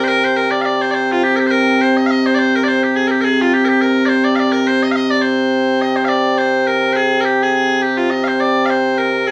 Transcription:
0.00 9.31 C3 medium
0.00 9.31 C4 medium
0.00 0.08 C5 loud
0.08 0.24 A#4 loud
0.24 0.37 C5 loud
0.37 0.51 A#4 loud
0.51 0.61 D5 medium
0.61 0.82 D5 medium
0.61 0.65 F5 medium
0.82 0.91 C5 medium
0.91 1.12 C5 medium
0.91 0.94 D5 medium
1.12 1.23 F4 medium
1.23 1.36 G4 loud
1.36 1.47 G4 medium
1.36 1.39 A#4 medium
1.47 1.51 C5 loud
1.51 1.81 A#4 loud
1.81 1.97 C5 medium
1.97 2.06 D#5 medium
2.06 2.10 F5 loud
2.10 2.26 D#5 loud
2.26 2.35 C5 loud
2.35 2.56 C5 loud
2.35 2.39 D5 loud
2.56 2.64 A#4 medium
2.64 2.68 D5 loud
2.68 2.84 C5 loud
2.84 2.96 G4 medium
2.96 3.07 G#4 medium
3.07 3.21 G4 medium
3.07 3.11 A#4 medium
3.21 3.41 G#4 medium
3.21 3.24 A#4 medium
3.41 3.53 F4 medium
3.53 3.65 G4 loud
3.65 3.81 G4 medium
3.65 3.68 A#4 medium
3.81 4.06 A#4 loud
4.06 4.24 C5 loud
4.06 4.09 D5 loud
4.24 4.35 D5 medium
4.35 4.52 D5 loud
4.35 4.39 F5 loud
4.52 4.67 A#4 medium
4.67 4.83 C5 loud
4.83 4.91 D#5 loud
4.91 4.96 F5 loud
4.96 5.10 D#5 loud
5.10 5.22 D5 medium
5.22 5.82 C5 medium
5.82 5.96 D#5 medium
5.96 6.05 C5 medium
6.05 6.38 D5 loud
6.05 6.08 F5 loud
6.38 6.67 C5 medium
6.67 6.93 A#4 medium
6.93 7.21 G#4 medium
6.93 6.96 C5 medium
7.21 7.25 A#4 medium
7.25 7.43 G4 medium
7.43 7.53 G#4 medium
7.53 7.82 G#4 medium
7.82 7.97 G4 medium
7.97 8.10 F4 medium
8.10 8.24 D#5 medium
8.24 8.40 C5 medium
8.24 8.28 F5 medium
8.40 8.66 D5 loud
8.66 8.70 F5 medium
8.70 8.98 C5 medium
8.98 9.27 A#4 medium
9.27 9.31 G#4 medium

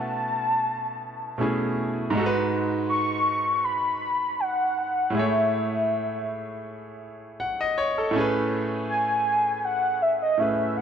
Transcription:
0.00 1.33 B2 medium
0.00 1.34 A3 medium
0.00 1.35 C#4 medium
0.00 1.36 E4 medium
0.00 1.38 B4 medium
0.00 1.39 A5 loud
1.38 2.13 B2 medium
1.38 2.14 A3 medium
1.38 2.14 C#4 soft
1.38 2.15 E4 medium
1.42 2.16 G#4 medium
2.10 5.08 G#2 medium
2.10 5.09 G#3 medium
2.15 5.10 D#4 medium
2.15 5.12 F#4 medium
2.20 2.24 A4 medium
2.26 5.16 B4 medium
2.89 3.66 C#6 loud
3.64 4.41 B5 loud
4.40 5.16 F#5 medium
5.10 8.08 A2 medium
5.10 5.20 G#3 soft
5.15 8.10 E4 medium
5.15 7.36 G#4 medium
5.15 6.27 E5 medium
5.19 8.12 A3 medium
5.19 7.38 C#5 medium
7.40 7.59 F#5 medium
7.61 7.76 D#5 medium
7.78 7.96 C#5 medium
7.98 8.33 A4 medium
8.11 10.33 A2 medium
8.11 10.35 A3 medium
8.16 10.36 C#4 medium
8.16 10.37 G#4 medium
8.20 10.38 B4 medium
8.90 9.66 G#5 loud
9.65 10.03 F#5 loud
10.02 10.22 E5 loud
10.22 10.41 D#5 medium
10.37 10.81 A2 soft
10.37 10.81 A3 soft
10.37 10.81 C#4 soft
10.37 10.81 G#4 soft
10.37 10.78 E5 medium
10.42 10.81 B4 medium
10.77 10.81 F#5 loud

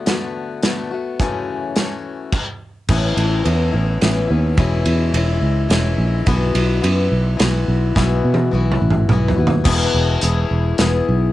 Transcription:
0.06 0.61 D3 medium
0.06 0.63 A3 medium
0.06 0.64 B3 medium
0.06 0.65 F#4 medium
0.06 snare medium
0.06 closed hi-hat medium
0.62 0.91 D3 medium
0.62 0.92 A3 medium
0.62 0.91 B3 medium
0.62 0.90 F#4 medium
0.62 snare medium
0.62 closed hi-hat medium
0.91 1.20 A3 soft
0.91 1.20 B3 soft
0.91 1.20 F#4 soft
1.19 1.76 F#2 medium
1.19 1.77 C#3 medium
1.19 1.74 E3 medium
1.19 1.75 A3 medium
1.19 1.76 C#4 medium
1.19 1.77 F#4 medium
1.19 kick medium
1.19 closed hi-hat soft
1.76 2.33 E3 medium
1.76 2.33 A3 medium
1.76 2.33 C#4 medium
1.76 2.34 F#4 medium
1.76 snare medium
1.76 closed hi-hat medium
2.32 kick medium
2.32 crash medium
2.88 3.13 A1 medium
2.88 3.46 A2 medium
2.88 3.44 E3 medium
2.88 3.45 B3 medium
2.88 3.46 C#4 medium
2.88 3.47 E4 medium
2.88 kick loud
2.88 crash medium
3.17 3.41 A1 medium
3.17 ride medium
3.44 3.70 E2 medium
3.44 3.73 E3 medium
3.44 3.74 B3 medium
3.44 3.73 C#4 medium
3.44 3.71 E4 medium
3.44 ride medium
3.72 3.98 A1 medium
3.72 4.02 B3 soft
3.72 4.02 C#4 soft
3.72 4.01 E4 soft
4.01 4.26 A1 medium
4.01 4.30 E3 medium
4.01 4.30 B3 medium
4.01 4.29 C#4 medium
4.01 4.27 E4 medium
4.01 snare medium
4.01 ride medium
4.28 4.59 D#2 medium
4.28 4.58 B3 soft
4.28 4.58 C#4 soft
4.28 4.58 E4 soft
4.57 4.82 E1 medium
4.57 5.14 E2 medium
4.57 5.15 B2 medium
4.57 5.13 E3 medium
4.57 5.13 G#3 medium
4.57 5.14 C#4 medium
4.57 5.16 E4 medium
4.57 kick loud
4.57 ride medium
4.85 5.10 E2 medium
4.85 ride medium
5.14 5.38 E1 medium
5.14 5.68 E3 medium
5.14 5.68 G#3 medium
5.14 5.70 C#4 medium
5.14 5.72 E4 medium
5.14 ride medium
5.41 5.66 C#2 medium
5.69 5.95 E1 medium
5.69 6.26 E3 medium
5.69 6.27 G#3 medium
5.69 6.28 C#4 medium
5.69 6.28 E4 medium
5.69 snare medium
5.69 ride medium
5.98 6.23 A#1 medium
6.26 6.51 B1 medium
6.26 6.83 B2 medium
6.26 6.81 E3 medium
6.26 6.82 B3 medium
6.26 6.83 E4 medium
6.26 6.83 F#4 medium
6.26 kick loud
6.26 ride medium
6.55 6.79 B1 medium
6.55 ride medium
6.81 7.08 F#2 medium
6.81 7.36 E3 medium
6.81 7.38 B3 medium
6.81 7.39 E4 medium
6.81 7.39 F#4 medium
6.81 ride medium
7.12 7.36 B1 medium
7.37 7.64 B1 medium
7.37 7.95 E3 medium
7.37 7.96 B3 medium
7.37 7.96 E4 medium
7.37 7.96 F#4 medium
7.37 snare medium
7.37 ride medium
7.68 7.93 B1 medium
7.95 8.21 B1 loud
7.95 8.53 B2 medium
7.95 8.50 E3 medium
7.95 8.52 B3 medium
7.95 8.53 E4 medium
7.95 8.53 F#4 medium
7.95 kick loud
7.95 snare medium
8.24 8.49 B2 medium
8.34 high tom medium
8.51 8.77 B1 medium
8.51 9.08 E3 medium
8.51 9.09 B3 medium
8.51 9.10 E4 medium
8.51 9.10 F#4 medium
8.72 mid tom medium
8.82 9.06 A1 medium
8.90 mid tom medium
9.09 9.33 B1 medium
9.09 9.38 E3 medium
9.09 9.38 B3 medium
9.09 9.36 E4 medium
9.09 9.35 F#4 medium
9.09 mid tom medium
9.28 floor tom medium
9.36 9.62 D#2 medium
9.36 9.64 B3 soft
9.36 9.64 E4 soft
9.36 9.65 F#4 soft
9.47 floor tom medium
9.64 9.87 E1 medium
9.64 10.22 E2 medium
9.64 10.22 B2 medium
9.64 10.20 E3 medium
9.64 10.21 B3 medium
9.64 10.22 E4 medium
9.64 10.23 G#4 medium
9.64 kick loud
9.64 crash loud
9.94 10.16 E1 medium
10.21 10.44 E1 medium
10.21 10.77 E3 medium
10.21 10.79 B3 medium
10.21 10.79 E4 medium
10.21 10.80 G#4 medium
10.21 closed hi-hat medium
10.51 10.72 E1 medium
10.78 11.00 E1 medium
10.78 11.33 E3 medium
10.78 11.33 B3 medium
10.78 11.33 E4 medium
10.78 11.33 G#4 medium
10.78 snare medium
10.78 closed hi-hat medium
11.09 11.30 B1 medium

